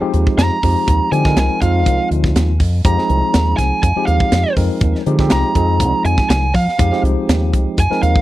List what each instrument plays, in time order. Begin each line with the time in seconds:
0.01 tine electric piano F3 G#3 C4 D#4 G4, muted fingered electric bass stroke
0.14 fingered electric bass D#2, closed hi-hat
0.27 kick
0.38 fingered electric bass F2, lead electric guitar A#5, snare, closed hi-hat
0.63 fingered electric bass F2, tine electric piano F3 G#3 C4 D#4 G4, kick, open hi-hat
0.88 fingered electric bass D#2, kick, closed hi-hat
1.12 fingered electric bass D3, tine electric piano F3 G#3 C4 D#4 G4, lead electric guitar G#5, closed hi-hat
1.25 tine electric piano F3 G#3 C4 D#4 A#4, kick, snare
1.36 fingered electric bass C2, lead electric guitar G#5, snare, closed hi-hat
1.62 fingered electric bass F2, tine electric piano F3 G#3 C4 D#4 F4, lead electric guitar F5, kick, closed hi-hat
1.86 fingered electric bass C2, kick, closed hi-hat
2.11 fingered electric bass D2, closed hi-hat
2.24 kick, snare
2.35 fingered electric bass D#2, snare, closed hi-hat
2.60 fingered electric bass F2, kick, open hi-hat
2.85 fingered electric bass F2, tine electric piano F3 G#3 C4 D#4 G4, lead electric guitar A#5, kick, closed hi-hat
2.97 tine electric piano F3 G#3 C4 D#4 G#4, snare
3.10 fingered electric bass C2, closed hi-hat
3.34 fingered electric bass D#2, snare, closed hi-hat
3.57 fingered electric bass C2, lead electric guitar G#5, kick, snare, closed hi-hat
3.83 fingered electric bass F2, lead electric guitar G#5, kick, closed hi-hat
3.96 tine electric piano F3 G#3 C4 D#4 G4, muted fingered electric bass stroke
4.07 fingered electric bass D#2, lead electric guitar F5, closed hi-hat
4.20 kick
4.32 fingered electric bass F2, snare, closed hi-hat
4.56 fingered electric bass F2, tine electric piano F3 G#3 C4 D#4 A#4, kick, open hi-hat
4.81 fingered electric bass D#2, kick, closed hi-hat
4.95 snare
5.06 fingered electric bass D3, tine electric piano F3 G#3 C4 D#4 G4, closed hi-hat
5.19 tine electric piano F3 G#3 C4 D#4 G4, kick, snare
5.30 fingered electric bass C2, lead electric guitar A#5, snare, closed hi-hat
5.55 fingered electric bass F2, tine electric piano F3 G#3 C4 D#4 G#4, kick, closed hi-hat
5.80 fingered electric bass C2, kick, closed hi-hat
6.05 fingered electric bass F2, lead electric guitar G#5, closed hi-hat
6.18 kick, snare
6.29 fingered electric bass C2, lead electric guitar G#5, snare, closed hi-hat
6.55 fingered electric bass F3, lead electric guitar F5, kick, open hi-hat
6.67 muted fingered electric bass stroke, snare
6.78 fingered electric bass F2, tine electric piano F3 G#3 C4 D#4 G4, kick, closed hi-hat
6.91 tine electric piano F3 G#3 C4 D#4 G4, snare
7.03 fingered electric bass C2, closed hi-hat
7.29 fingered electric bass D#2, snare, closed hi-hat
7.53 fingered electric bass C2, kick, closed hi-hat
7.78 fingered electric bass F2, lead electric guitar G#5, kick, closed hi-hat
7.90 tine electric piano F3 G#3 C4 D#4 A#4, muted fingered electric bass stroke, snare
8.03 fingered electric bass D#2, lead electric guitar F5, closed hi-hat
8.16 kick